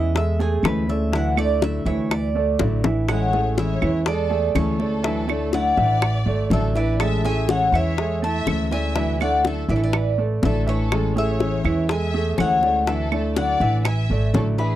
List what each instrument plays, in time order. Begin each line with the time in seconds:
Already playing: upright bass E2, grand piano E3 E4 E5, nylon-string guitar G#3 C#4 E4, cuban tres D#5
0.14 grand piano G#3 G#4 A4, cuban tres E5, muted nylon-string guitar stroke, high bongo
0.39 grand piano A3 G#4 A4, cuban tres G#4, high bongo
0.63 upright bass D2, nylon-string guitar E3 G#3 C#4 E4, cuban tres B4, high bongo, low bongo, claves
0.88 nylon-string guitar G#3 C#4 E4, grand piano A3 A4 D5, cuban tres E5, high bongo
1.12 nylon-string guitar D3 F#3 A3 D4 E4, grand piano E3 E4 E5, cuban tres F#5, high bongo
1.36 grand piano A3 A4 D5, nylon-string guitar A3 D4 E4, cuban tres D5, high bongo, claves
1.60 nylon-string guitar D3 F#3 A3 D4 E4, cuban tres E5, high bongo
1.85 upright bass D2, grand piano E3 E4 E5, nylon-string guitar A3 D4 E4, cuban tres C#5, high bongo
2.11 cuban tres D5, muted nylon-string guitar stroke, high bongo, claves
2.35 grand piano A3 A4 D5
2.59 upright bass A1, nylon-string guitar D3 F#3 A3 D4 E4, grand piano A3 A4 D5, high bongo
2.84 grand piano E3 E4 E5, nylon-string guitar A3 D4 E4, low bongo
3.09 nylon-string guitar E3 G#3 C#4 E4, grand piano G#3 G#4 A4, violin section C#5, cuban tres F#5, high bongo, claves
3.33 nylon-string guitar G#3 C#4 E4, grand piano A3 G#4 A4, high bongo
3.57 nylon-string guitar E3 G#3 C#4 E4, violin section C#5, cuban tres E5, high bongo
3.81 upright bass E2, grand piano E3 E4 E5, nylon-string guitar G#3 C#4 E4, high bongo, claves
4.06 grand piano G#3 G#4 A4, violin section A4, cuban tres D5, muted nylon-string guitar stroke, high bongo
4.30 grand piano A3 G#4 A4
4.55 upright bass D2, nylon-string guitar E3 G#3 C#4 E4, violin section A4, cuban tres C#5, high bongo, low bongo, claves
4.79 nylon-string guitar G#3 C#4 E4, grand piano A3 A4 D5, high bongo
5.03 nylon-string guitar D3 F#3 A3 D4 E4, grand piano E3 E4 E5, high bongo
5.28 grand piano A3 A4 D5, nylon-string guitar A3 D4 E4, high bongo, claves
5.52 nylon-string guitar D3 F#3 A3 D4 E4, violin section D5, cuban tres F#5, high bongo
5.77 upright bass A1, grand piano E3 E4 E5, nylon-string guitar A3 E4, high bongo
6.02 muted nylon-string guitar stroke, high bongo, claves
6.26 upright bass G#1, grand piano A3 A4 D5
6.50 upright bass A1, nylon-string guitar D3 F#3 A3 D4 E4, grand piano A3 A4 D5, violin section A4, cuban tres E5, high bongo, low bongo
6.75 grand piano E3 E4 E5, nylon-string guitar A3 D4 E4, violin section B4, cuban tres D5, high bongo
6.99 nylon-string guitar E3 G#3 C#4 E4, grand piano G#3 G#4 A4, violin section E5, cuban tres A5, high bongo, claves
7.23 nylon-string guitar G#3 C#4 E4, grand piano A3 G#4 A4, violin section E5, cuban tres G#5, high bongo
7.48 nylon-string guitar E3 G#3 C#4 E4, violin section C#5, cuban tres F#5, high bongo
7.72 upright bass E2, grand piano E3 E4 E5, nylon-string guitar G#3 C#4 E4, cuban tres E5, high bongo, claves
7.77 violin section C#5
7.97 grand piano G#3 G#4 A4, muted nylon-string guitar stroke, high bongo
8.22 grand piano A3 E4 A4, violin section E5, cuban tres A5
8.45 upright bass D2, nylon-string guitar E3 G#3 C#4 E4, high bongo, low bongo, claves
8.71 nylon-string guitar G#3 C#4 E4, grand piano A3 A4 D5, violin section E5, cuban tres G#5, high bongo
8.95 nylon-string guitar D3 F#3 A3 D4 E4, grand piano E3 E4 E5, high bongo
9.20 grand piano A3 A4 D5, nylon-string guitar A3 D4 E4, violin section D5, cuban tres F#5, high bongo, claves
9.44 nylon-string guitar D3 F#3 A3 D4 E4, violin section A4, cuban tres E5, high bongo
9.68 upright bass A1, grand piano E3 E4 E5, nylon-string guitar A3 D4 E4, violin section B4, cuban tres D5, high bongo
9.76 violin section A4, cuban tres C#5
9.84 violin section B4, cuban tres D5
9.93 muted nylon-string guitar stroke, high bongo, claves
10.18 grand piano A3 A4 D5
10.42 upright bass A1, nylon-string guitar D3 F#3 A3 D4 E4, grand piano A3 A4 D5, violin section A4, cuban tres E5, high bongo, low bongo
10.66 grand piano E3 E4 E5, nylon-string guitar A3 D4 E4, violin section A4, cuban tres C#5, high bongo
10.91 nylon-string guitar E3 G#3 C#4 E4, grand piano G#3 G#4 A4, high bongo, claves
11.16 nylon-string guitar G#3 C#4 E4, grand piano A3 G#4 A4, violin section C#5, cuban tres E5, high bongo
11.40 nylon-string guitar E3 G#3 C#4 E4, high bongo
11.64 upright bass E2, grand piano E3 E4 E5, nylon-string guitar G#3 C#4 E4, high bongo, claves
11.89 grand piano G#3 G#4 A4, violin section E5, cuban tres G#5, muted nylon-string guitar stroke, high bongo
12.14 grand piano A3 G#4 A4
12.38 upright bass D2, nylon-string guitar E3 G#3 C#4 E4, violin section C#5, cuban tres F#5, high bongo, low bongo, claves
12.62 nylon-string guitar G#3 C#4 E4, grand piano A3 A4 D5, high bongo
12.86 nylon-string guitar D3 F#3 A3 D4 E4, grand piano E3 E4 E5, violin section A4, cuban tres E5, high bongo
13.11 grand piano A3 A4 D5, nylon-string guitar A3 D4 E4, high bongo, claves
13.36 nylon-string guitar D3 F#3 A3 D4 E4, violin section D5, cuban tres F#5, high bongo
13.60 upright bass A1, grand piano E3 E4 E5, nylon-string guitar A3 D4 E4, high bongo
13.85 violin section E5, cuban tres G#5, muted nylon-string guitar stroke, high bongo, claves
14.10 upright bass G#1, grand piano A3 A4 D5
14.34 upright bass A1, nylon-string guitar D3 F#3 A3 D4 E4, grand piano A3 A4 D5, violin section A4, cuban tres C#5, high bongo, low bongo
14.58 grand piano E3 E4 E5, nylon-string guitar A3 D4 E4, violin section G#4, cuban tres B4, high bongo